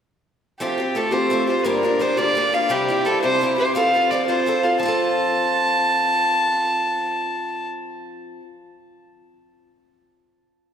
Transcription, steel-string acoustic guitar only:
0.60 0.79 F3 medium
0.60 0.79 A3 medium
0.60 0.79 C4 medium
0.60 0.78 F4 medium
0.60 0.76 G4 medium
0.78 0.95 C4 soft
0.78 0.95 F4 soft
0.78 0.95 G4 soft
0.95 1.11 A3 medium
0.95 1.11 C4 medium
0.95 1.11 F4 medium
0.95 1.10 G4 medium
1.11 1.32 F3 soft
1.11 1.29 A3 soft
1.11 1.30 C4 soft
1.11 1.31 F4 soft
1.11 1.31 G4 soft
1.30 1.48 A3 medium
1.30 1.48 C4 medium
1.30 1.48 F4 medium
1.30 1.46 G4 medium
1.47 1.65 C4 soft
1.47 1.65 F4 soft
1.47 1.65 G4 soft
1.64 1.84 G2 medium
1.64 1.84 D3 medium
1.64 1.84 F3 medium
1.64 1.83 A#3 medium
1.64 1.83 D4 medium
1.64 1.82 G4 medium
1.83 1.98 F3 soft
1.83 1.99 A#3 soft
1.83 2.00 D4 soft
1.83 2.00 G4 soft
1.99 2.17 F3 soft
1.99 2.17 A#3 medium
1.99 2.16 D4 medium
1.99 2.16 G4 medium
2.17 2.37 G2 soft
2.17 2.37 D3 soft
2.17 2.34 F3 soft
2.17 2.35 A#3 soft
2.17 2.36 D4 soft
2.17 2.36 G4 medium
2.35 2.53 F3 medium
2.35 2.53 A#3 medium
2.35 2.52 D4 medium
2.35 2.51 G4 medium
2.53 2.69 F3 soft
2.53 2.70 A#3 soft
2.53 2.70 D4 soft
2.53 2.70 G4 soft
2.69 2.88 C3 medium
2.69 2.89 G3 medium
2.69 2.89 C4 medium
2.69 2.89 E4 medium
2.69 2.87 G4 medium
2.88 3.05 C4 soft
2.88 3.06 E4 medium
2.88 3.06 G4 soft
3.05 3.22 G3 medium
3.05 3.22 C4 soft
3.05 3.22 E4 soft
3.05 3.21 G4 soft
3.23 3.42 C3 soft
3.23 3.40 G3 soft
3.23 3.41 C4 soft
3.23 3.41 E4 soft
3.23 3.41 G4 soft
3.41 3.58 G3 soft
3.41 3.58 C4 medium
3.41 3.58 E4 medium
3.41 3.57 G4 medium
3.58 3.75 C4 soft
3.58 3.76 E4 soft
3.58 3.75 G4 soft
3.75 3.94 F3 medium
3.75 3.94 C4 medium
3.75 3.94 F4 medium
3.75 3.93 A4 medium
3.94 4.11 C4 soft
3.94 4.11 F4 soft
3.94 4.11 A4 soft
4.11 4.28 F3 medium
4.11 4.28 C4 medium
4.11 4.28 F4 medium
4.11 4.27 A4 medium
4.28 4.45 F3 soft
4.28 4.46 C4 soft
4.28 4.47 F4 medium
4.28 4.47 A4 soft
4.46 4.63 F3 soft
4.46 4.64 C4 medium
4.46 4.63 F4 medium
4.46 4.62 A4 medium
4.63 4.81 C4 soft
4.63 4.81 F4 soft
4.63 4.80 A4 soft
4.79 8.40 F3 medium
4.79 8.42 C4 medium
4.85 8.43 F4 medium
4.85 8.44 A4 medium

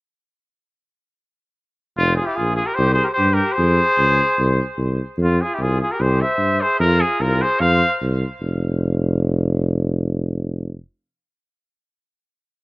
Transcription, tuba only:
1.97 2.19 F1 medium
2.38 2.60 A#1 medium
2.78 3.00 C2 loud
3.19 3.40 G2 medium
3.58 3.80 F2 loud
3.98 4.20 C#2 medium
4.39 4.61 C2 medium
4.78 5.00 C2 medium
5.17 5.40 F2 loud
5.59 5.81 C2 medium
6.00 6.22 C2 medium
6.38 6.61 G2 medium
6.79 7.02 F2 loud
7.20 7.42 C2 medium
7.60 7.82 F2 medium
8.02 8.24 C2 medium
8.41 10.78 F1 loud

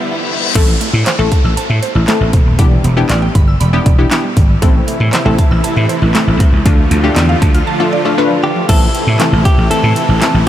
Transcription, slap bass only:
0.55 0.73 A1 loud
0.94 1.02 A2 medium
1.19 1.28 A1 medium
1.44 1.53 A1 medium
1.57 muted slap bass stroke soft
1.70 1.79 A2 medium
1.95 2.04 A1 loud
2.21 2.29 A1 medium
2.33 2.42 E1 medium
2.46 2.55 D#1 medium
2.59 2.76 E1 loud
2.84 3.02 E1 loud
3.10 3.27 A1 loud
3.35 3.53 G1 medium
3.60 3.78 E1 loud
3.86 4.04 E1 medium
4.37 4.54 G#1 medium
4.62 4.80 A1 loud
5.00 5.09 A2 medium
5.26 5.35 A1 medium
5.51 5.60 A1 medium
5.64 muted slap bass stroke soft
5.77 5.85 A2 medium
6.02 6.11 A1 medium
6.27 6.36 A1 loud
6.40 6.49 C2 loud
6.53 6.62 C#2 medium
6.66 6.83 D2 loud
6.91 7.09 D2 loud
7.16 7.34 E2 medium
7.42 7.60 D2 medium
8.69 8.87 A1 loud
9.07 9.16 A2 medium
9.33 9.41 A1 medium
9.58 9.67 A1 medium
9.71 muted slap bass stroke soft
9.83 9.92 A2 medium
10.09 10.18 A1 loud
10.34 10.43 A1 medium

